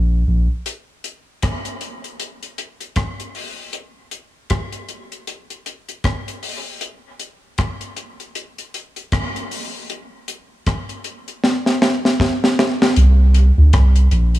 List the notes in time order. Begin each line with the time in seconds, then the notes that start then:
Already playing: A#1
0.27 A#1
0.66 closed hi-hat
1.04 closed hi-hat
1.43 kick, cross-stick, closed hi-hat
1.65 closed hi-hat
1.81 closed hi-hat
2.04 closed hi-hat
2.20 closed hi-hat
2.43 closed hi-hat
2.58 closed hi-hat
2.81 closed hi-hat
2.96 kick, cross-stick, closed hi-hat
3.20 closed hi-hat
3.35 open hi-hat
3.73 closed hi-hat
4.11 closed hi-hat
4.50 kick, cross-stick, closed hi-hat
4.72 closed hi-hat
4.89 closed hi-hat
5.12 closed hi-hat
5.27 closed hi-hat
5.50 closed hi-hat
5.66 closed hi-hat
5.89 closed hi-hat
6.04 kick, cross-stick, closed hi-hat
6.28 closed hi-hat
6.43 open hi-hat
6.81 closed hi-hat
7.20 closed hi-hat
7.58 kick, cross-stick, closed hi-hat
7.81 closed hi-hat
7.96 closed hi-hat
8.20 closed hi-hat
8.35 closed hi-hat
8.58 closed hi-hat
8.74 closed hi-hat
8.96 closed hi-hat
9.12 kick, cross-stick, closed hi-hat
9.36 closed hi-hat
9.51 open hi-hat
9.90 closed hi-hat
10.28 closed hi-hat
10.67 kick, cross-stick, closed hi-hat
10.89 closed hi-hat
11.04 closed hi-hat
11.28 closed hi-hat
11.44 snare
11.66 snare
11.82 snare
12.05 snare
12.20 kick, snare
12.44 snare
12.59 snare
12.82 snare
12.96 C2, closed hi-hat
13.34 closed hi-hat
13.58 D2
13.73 C2, kick, cross-stick, closed hi-hat
13.96 closed hi-hat
14.11 A#1, closed hi-hat
14.35 closed hi-hat